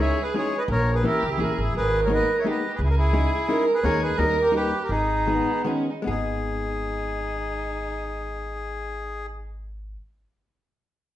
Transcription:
Already playing: violin G#4
0.00 hollow-body jazz guitar G#3 C#4 D#4 E4 G#4, accordion C#5 E5
0.22 accordion G#4 B4
0.34 hollow-body jazz guitar G#3 C#4 D#4 E4 G#4, accordion G#4 C#5
0.58 accordion B4 D#5, violin B4
0.68 upright bass A#1, violin A#4, accordion A#4 C#5
0.94 accordion G#4 B4
1.03 hollow-body jazz guitar E3 A#3 C#4 E4 A#4, accordion E4 A#4, violin G4
1.23 upright bass C#2
1.31 accordion E4 G#4
1.38 upright bass A#1, hollow-body jazz guitar E3 A#3 C#4 E4 A#4, accordion E4, violin G#4
1.43 accordion A#4
1.58 upright bass G#1, accordion E4 G#4
1.75 upright bass G#1, accordion G#4 B4, violin A#4
2.05 hollow-body jazz guitar G#3 A#3 B3, accordion A#4 C#5
2.10 hollow-body jazz guitar D#4 G#4
2.14 accordion B4 D#5
2.39 accordion C#5 E5
2.44 hollow-body jazz guitar G#3 A#3 B3 D#4 G#4, violin G4
2.50 accordion B4 D#5
2.74 accordion G#4 B4
2.79 upright bass C#2, violin G#4
2.84 accordion E4 G#4
2.90 accordion A#4
2.98 accordion E4 G#4
3.13 hollow-body jazz guitar G#3 C#4 D#4 E4 G#4
3.48 hollow-body jazz guitar G#3 C#4 D#4 E4 G#4, violin A#4
3.74 accordion G#4 B4
3.83 upright bass D#2, hollow-body jazz guitar G#3 A#3 C#4 D#4 G#4, violin G#4, accordion A#4 C#5
4.02 accordion G#4 B4
4.16 upright bass D#2, hollow-body jazz guitar G3 A#3 C#4 D#4 G4, accordion A#4 D#5, violin A#4
4.41 accordion G4 A#4
4.51 hollow-body jazz guitar G3 A#3 C#4 D#4 G4, accordion G4
4.56 violin G4, accordion B4
4.84 accordion G4 A#4
4.89 upright bass G#1, accordion D#4 G#4, violin D#4
5.27 hollow-body jazz guitar D#3 G#3 B3 D#4 G#4, violin B3
5.64 hollow-body jazz guitar D#3 G#3 B3 D#4 G#4, violin C#4
5.90 violin D#4
6.02 hollow-body jazz guitar G#3 B3 D#4
6.07 upright bass G#1, violin D#4, hollow-body jazz guitar G#4, accordion G#4

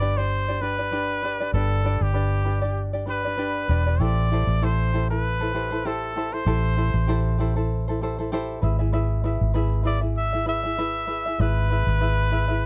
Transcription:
Already playing: fingered electric bass G1, trumpet D5
0.00 ukulele D4 G4 B4 D5
0.17 ukulele D4 G4 D5, trumpet C5
0.48 ukulele D4 G4 D5
0.61 ukulele D4 G4 B4 D5, trumpet B4
0.78 ukulele D4 G4 D5
0.91 ukulele D4 G4 B4 D5
1.23 ukulele D4 G4 B4 D5
1.40 ukulele D4 G4 D5
1.53 fingered electric bass G1, ukulele D4 G4 B4 D5, trumpet A4
1.84 ukulele D4 G4 B4 D5
2.01 fingered electric bass G1, trumpet G4
2.14 ukulele D4 G4 B4 D5
2.45 ukulele D4 G4 B4 D5
2.62 ukulele D4 G4 D5
2.93 ukulele D4 G4 D5
3.06 ukulele D4 G4 B4 D5, trumpet B4
3.24 ukulele D4 G4 D5
3.37 ukulele D4 G4 B4 D5
3.69 fingered electric bass E1, ukulele D4 G4 B4 D5
3.86 ukulele D4 G4 D5
4.00 fingered electric bass A1, ukulele E4 G4 A4 C5, trumpet D5
4.31 ukulele E4 G4 A4 C5
4.47 fingered electric bass A1
4.61 ukulele E4 G4 A4 C5, trumpet C5
4.93 ukulele E4 G4 A4 C5
5.10 ukulele E4 A4, trumpet B4
5.40 ukulele E4 A4 C5
5.54 ukulele E4 G4 A4 C5
5.71 ukulele E4 A4 C5
5.85 ukulele E4 G4 A4 C5, trumpet A4
6.16 ukulele E4 G4 A4 C5
6.32 ukulele E4 A4 C5, trumpet C5
6.46 fingered electric bass A1, ukulele E4 G4 A4 C5
6.76 ukulele E4 G4 A4 C5
6.94 fingered electric bass A1
7.07 ukulele E4 G4 A4 C5
7.38 ukulele E4 G4 A4 C5
7.56 ukulele E4 A4 C5
7.88 ukulele E4 A4 C5
8.01 ukulele E4 G4 A4 C5
8.19 ukulele E4 A4 C5
8.32 ukulele E4 G4 A4 C5
8.62 fingered electric bass G#1, ukulele E4 G#4 B4 E5
8.79 ukulele E4 G#4 E5
8.92 ukulele E4 G#4 B4 E5
9.24 ukulele E4 G#4 B4 E5
9.41 fingered electric bass G#1
9.54 ukulele E4 G#4 B4 E5
9.83 ukulele E4 G#4 B4 E5, trumpet D5
10.01 ukulele E4 G#4 E5
10.17 trumpet E5
10.33 ukulele E4 G#4 E5
10.46 ukulele E4 G#4 B4 E5, trumpet E5
10.63 ukulele E4 G#4 E5
10.78 ukulele E4 G#4 B4 E5
11.07 ukulele E4 G#4 B4 E5
11.26 ukulele E4 G#4 E5
11.39 fingered electric bass G#1, ukulele E4 G#4 B4 E5, trumpet B4
11.70 ukulele E4 G#4 B4 E5
11.87 fingered electric bass G#1
12.00 ukulele E4 G#4 B4 E5
12.31 ukulele E4 G#4 B4 E5
12.48 ukulele E4 G#4 E5

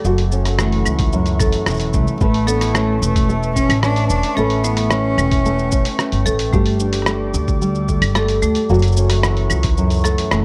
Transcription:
Already playing: nylon-string guitar G3 A3 D4, ambient pad A4
0.03 upright bass F#1, nylon-string guitar F#2 F#4, ambient pad E5 F#5 C#6, shaker
0.18 open hi-hat
0.32 nylon-string guitar C#4, shaker
0.45 cross-stick, open hi-hat, shaker
0.59 nylon-string guitar E3, marimba A3, cross-stick, shaker
0.72 open hi-hat
0.85 upright bass C#2, claves, shaker
0.99 kick, open hi-hat, shaker
1.12 nylon-string guitar F#2, shaker
1.26 open hi-hat, shaker
1.40 nylon-string guitar A3, marimba A4, kick, cross-stick, shaker
1.52 open hi-hat, shaker
1.66 upright bass E1, nylon-string guitar E3, cross-stick, shaker
1.70 shaker
1.74 shaker
1.77 open hi-hat, shaker
1.80 shaker
1.93 upright bass C#2, cello A3, kick, shaker
2.07 shaker
2.19 upright bass A1, cello A3, nylon-string guitar A3 B4, ambient pad B4 A5 C#6, kick, shaker
2.34 open hi-hat
2.46 cello B3, nylon-string guitar D4, marimba A4, shaker
2.61 nylon-string guitar E4, cross-stick, open hi-hat, shaker
2.73 cello A3, marimba A3, nylon-string guitar C#4, cross-stick, shaker
3.01 upright bass E1, cello A3, shaker
3.16 kick, open hi-hat, shaker
3.29 nylon-string guitar A3, shaker
3.43 shaker
3.55 cello C#4, nylon-string guitar C#4, kick, shaker
3.69 upright bass A1, open hi-hat, claves, shaker
3.82 nylon-string guitar C#4, cello D4, cross-stick, shaker
3.96 open hi-hat, shaker
4.09 upright bass E1, cello D4, shaker
4.23 open hi-hat, shaker
4.35 upright bass A1, nylon-string guitar A3 B4, cello C#4, marimba A4, ambient pad G5, shaker
4.50 open hi-hat
4.63 marimba A3, cello B3, nylon-string guitar E4, shaker
4.77 cross-stick, open hi-hat, shaker
4.91 cello C#4, nylon-string guitar C#4, cross-stick, shaker
5.18 upright bass E1, claves, shaker
5.31 kick, open hi-hat, shaker
5.45 nylon-string guitar A3, shaker
5.59 shaker
5.72 nylon-string guitar C#4, kick, shaker
5.85 open hi-hat, shaker
5.99 nylon-string guitar C#4, cross-stick, shaker
6.12 upright bass G1, open hi-hat, shaker
6.26 upright bass A1, marimba A4, kick, shaker
6.39 open hi-hat, shaker
6.53 upright bass G1, nylon-string guitar G3 G4, marimba A3, ambient pad A4 D5 D6, kick, shaker
6.66 open hi-hat
6.80 nylon-string guitar D4, shaker
6.93 cross-stick, open hi-hat, shaker
7.02 cross-stick
7.06 nylon-string guitar A3, cross-stick, shaker
7.11 cross-stick
7.34 upright bass D2, shaker
7.48 kick, shaker
7.62 nylon-string guitar G3, shaker
7.75 shaker
7.88 nylon-string guitar A3, kick, shaker
8.02 upright bass G1, open hi-hat, claves, shaker
8.15 nylon-string guitar A3, marimba A4, cross-stick, shaker
8.28 open hi-hat, shaker
8.42 upright bass D2, marimba A3, shaker
8.55 open hi-hat, shaker
8.69 upright bass F#1, nylon-string guitar F#2 F#4, ambient pad E5 F#5 C#6, shaker
8.74 shaker
8.79 open hi-hat, shaker
8.83 shaker
8.87 shaker
8.92 shaker
8.97 nylon-string guitar C#4, shaker
9.10 cross-stick, open hi-hat, shaker
9.23 nylon-string guitar E3, cross-stick, shaker
9.37 open hi-hat
9.50 upright bass C#2, claves, shaker
9.63 kick, open hi-hat, shaker
9.77 nylon-string guitar F#2, shaker
9.90 open hi-hat, shaker
9.93 shaker
9.96 shaker
9.98 shaker
10.00 shaker
10.03 nylon-string guitar A3, marimba A4, cross-stick, shaker
10.05 shaker
10.18 open hi-hat, shaker
10.31 upright bass F#1, nylon-string guitar E3, marimba A3, cross-stick, shaker

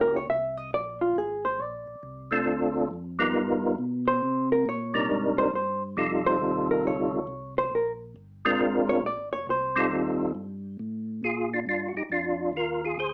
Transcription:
Already playing: tonewheel organ C#2 A#3 C#4 E4 F#4 G4
0.01 hollow-body jazz guitar A#4
0.16 hollow-body jazz guitar C#5
0.28 tonewheel organ C2, hollow-body jazz guitar E5
0.57 hollow-body jazz guitar D#5
0.71 tonewheel organ A#1, hollow-body jazz guitar D5
1.01 hollow-body jazz guitar F4
1.16 tonewheel organ G#1, hollow-body jazz guitar G#4
1.45 hollow-body jazz guitar C5
1.59 tonewheel organ A#1, hollow-body jazz guitar D5
1.87 tonewheel organ A#1
2.03 tonewheel organ C2
2.31 tonewheel organ A3 C4 D4 F4 A4
2.47 tonewheel organ D2
2.91 tonewheel organ F2
3.19 tonewheel organ G3 B3 D#4 F4 A#4
3.34 tonewheel organ G2
3.78 tonewheel organ B2
4.08 hollow-body jazz guitar C5
4.22 tonewheel organ C3
4.52 hollow-body jazz guitar A#4
4.66 tonewheel organ A#2, hollow-body jazz guitar C#5
4.94 tonewheel organ C3 G3 D4 D#4 A#4
5.10 tonewheel organ G#2
5.38 tonewheel organ G#2, hollow-body jazz guitar C5
5.53 tonewheel organ G2, hollow-body jazz guitar C5
5.97 tonewheel organ F2 C3 G3 D#4 F4 A4
6.26 hollow-body jazz guitar C5
6.41 tonewheel organ D#2
6.71 hollow-body jazz guitar A#4
6.84 tonewheel organ D2, hollow-body jazz guitar C#5
7.27 tonewheel organ C2
7.58 hollow-body jazz guitar C5
7.71 tonewheel organ A#1, hollow-body jazz guitar A#4
8.16 tonewheel organ G1
8.45 tonewheel organ G#3 C4 D4 F4 A#4
8.59 tonewheel organ G#1
8.89 hollow-body jazz guitar C#5
9.03 tonewheel organ A#1, hollow-body jazz guitar D5
9.17 tonewheel organ G#1
9.31 tonewheel organ F1, hollow-body jazz guitar C#5
9.47 tonewheel organ C2, hollow-body jazz guitar C5
9.76 tonewheel organ G3 C4 D#4 F4 A4
9.90 tonewheel organ D#2
10.35 tonewheel organ G2
10.79 tonewheel organ A2
11.23 tonewheel organ A#2 F4 G#4
11.53 tonewheel organ D4 F4
11.67 tonewheel organ G2 D4 F4
11.88 tonewheel organ F#4
11.94 tonewheel organ G2 D#4 G4
12.10 tonewheel organ F2 D4 F4
12.53 tonewheel organ D#2 F4 A#4
12.85 tonewheel organ F4 G#4
12.97 tonewheel organ D2 G#4 C5

